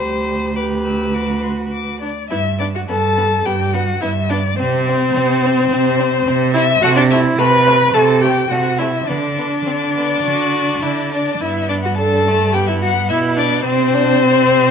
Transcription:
Already playing: cello D2, viola G4, violin C5 B5
0.56 viola G4, violin B4 D6
0.85 violin E6
1.14 viola F#4, violin D6
1.44 violin C6
1.72 violin D6
2.01 viola D4, violin D5
2.30 cello G2, violin B3 E5, viola E4
2.59 violin B3 D5, viola D4
2.75 viola F#4, violin F#5
2.88 cello G2, violin B3 A5, viola A4
3.17 violin B3
3.45 cello G2, violin B3 G5, viola G4
3.74 violin B3 F#5, viola F#4
4.02 cello G2, violin B3 E5, viola E4
4.30 violin B3 D5, viola D4
4.58 cello C3, viola C4, violin C4 C5
4.88 violin C4
5.15 cello C3, violin C4
5.45 violin C4
5.71 cello C3, violin C4
5.99 violin C4
6.27 cello C3, violin C4
6.54 violin C4 E5, viola E4
6.82 cello C3, violin A3 F#5, viola F#4
6.96 viola D4, violin D5
7.10 violin A3 E5, viola E4
7.39 cello C3, violin A3 B5, viola B4
7.67 violin A3
7.93 cello C3, violin A3 A5, viola A4
8.22 violin A3 G5, viola G4
8.50 cello C3, violin A3 F#5, viola F#4
8.79 violin A3 E5, viola E4
9.07 cello D3, violin B3 D5, viola D4
9.38 violin B3
9.65 cello D3, violin C4
9.95 violin B3
10.23 cello D3, violin F#4
10.82 cello D3, violin E4
11.12 violin D4 D5, viola D4
11.41 cello G2, violin B3 E5, viola E4
11.69 viola D4, violin D5
11.84 viola F#4, violin F#5
11.97 violin D4 A5, viola A4
12.28 violin A3
12.54 violin B3 G5, viola G4
12.67 viola E4, violin E5
12.82 viola F#4, violin F#5
13.09 cello B2, viola E4, violin E5
13.37 viola D4, violin D5
13.64 cello C3, viola C4, violin C4 C5
13.94 violin D4
14.21 violin C4

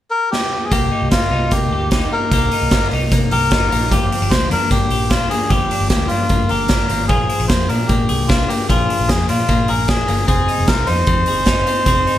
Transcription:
0.10 melodica A#4
0.31 melodica G4, snare
0.64 melodica G#4
0.71 fingered electric bass C2, clean electric guitar A#3 G4, melodica G4, kick, closed hi-hat
0.92 clean electric guitar D#4
1.02 fingered electric bass C2
1.11 fingered electric bass G1, clean electric guitar A#3, melodica F4, kick, snare, closed hi-hat
1.31 fingered electric bass C2, clean electric guitar D#4
1.51 fingered electric bass C3, clean electric guitar A#3, melodica G4, kick, closed hi-hat
1.71 fingered electric bass D2, clean electric guitar G4
1.91 clean electric guitar D#4, melodica G4, kick, snare, closed hi-hat
2.12 clean electric guitar A#3, melodica A#4
2.31 fingered electric bass C2, clean electric guitar A#3 G4, kick, closed hi-hat
2.51 clean electric guitar D#4, open hi-hat
2.62 fingered electric bass C2
2.71 fingered electric bass G1, clean electric guitar A#3, kick, snare, closed hi-hat
2.91 fingered electric bass C2, clean electric guitar D#4, open hi-hat
3.11 fingered electric bass C3, clean electric guitar A#3, kick, closed hi-hat
3.31 fingered electric bass C2, clean electric guitar G4, melodica A#4, open hi-hat
3.51 fingered electric bass G1, clean electric guitar D#4, kick, snare, closed hi-hat
3.72 fingered electric bass A#1, clean electric guitar A#3, open hi-hat
3.91 fingered electric bass G1, clean electric guitar F3 G4, melodica G4, kick, closed hi-hat
4.12 clean electric guitar C4, open hi-hat
4.22 fingered electric bass G1, clean electric guitar D4
4.30 fingered electric bass D2, clean electric guitar A#3, melodica C5, kick, snare, closed hi-hat
4.50 fingered electric bass G2, clean electric guitar D4, melodica A#4, open hi-hat
4.71 fingered electric bass G2, clean electric guitar A#3, melodica G4, kick, closed hi-hat
4.90 fingered electric bass A#1, clean electric guitar G4, open hi-hat
5.10 clean electric guitar D4, melodica F4, kick, snare, closed hi-hat
5.30 clean electric guitar A#3, melodica G#4, open hi-hat
5.49 fingered electric bass G1, clean electric guitar F3 G4, melodica G4, kick, closed hi-hat
5.71 clean electric guitar D4, open hi-hat
5.81 fingered electric bass G1
5.90 fingered electric bass D2, clean electric guitar A#3, melodica G4, kick, snare, closed hi-hat
6.07 melodica F4, open hi-hat
6.11 fingered electric bass G2, clean electric guitar D4
6.29 fingered electric bass G2, clean electric guitar A#3, kick, closed hi-hat
6.49 fingered electric bass G1, clean electric guitar G4, melodica A#4, open hi-hat
6.68 clean electric guitar D4, kick, snare, closed hi-hat
6.89 fingered electric bass G#1, clean electric guitar A#3, open hi-hat
7.07 fingered electric bass A#1, clean electric guitar F3 G#4, melodica G#4, kick, closed hi-hat
7.29 clean electric guitar C4, open hi-hat
7.40 fingered electric bass A#1, clean electric guitar D4
7.47 fingered electric bass F2, clean electric guitar A#3, melodica C5, kick, snare, closed hi-hat
7.68 fingered electric bass A#2, clean electric guitar D4, melodica A#4, open hi-hat
7.87 fingered electric bass A#2, clean electric guitar A#3, melodica G4, kick, closed hi-hat
8.09 fingered electric bass C2, clean electric guitar G#4, open hi-hat
8.28 clean electric guitar D4, melodica F4, kick, snare, closed hi-hat
8.48 clean electric guitar A#3, melodica G4, open hi-hat
8.69 fingered electric bass A#1, clean electric guitar F3 G#4, melodica F4, kick, closed hi-hat
8.89 clean electric guitar D4, open hi-hat
8.99 fingered electric bass A#1
9.08 fingered electric bass F2, clean electric guitar A#3, melodica G#4, kick, snare, closed hi-hat
9.28 fingered electric bass A#2, clean electric guitar D4, melodica F4, open hi-hat
9.48 fingered electric bass A#2, clean electric guitar A#3, kick, closed hi-hat
9.68 fingered electric bass A#1, clean electric guitar G#4, melodica A#4, open hi-hat
9.88 clean electric guitar D4, melodica G#4, kick, snare, closed hi-hat
10.08 fingered electric bass G1, clean electric guitar A#3, open hi-hat
10.27 fingered electric bass F1, clean electric guitar C4 G#4, melodica G#4, kick, closed hi-hat
10.48 clean electric guitar D#4, open hi-hat
10.58 fingered electric bass F1
10.67 fingered electric bass C2, clean electric guitar C4, melodica A#4, kick, snare, closed hi-hat
10.86 fingered electric bass F2, clean electric guitar D#4, melodica C5, open hi-hat
11.07 fingered electric bass F2, clean electric guitar C4, kick, closed hi-hat
11.26 fingered electric bass G1, clean electric guitar G#4, open hi-hat
11.45 clean electric guitar D#4, kick, snare, closed hi-hat
11.67 clean electric guitar C4, open hi-hat
11.86 fingered electric bass F1, clean electric guitar C4 G#4, kick, closed hi-hat
12.07 clean electric guitar D#4, open hi-hat

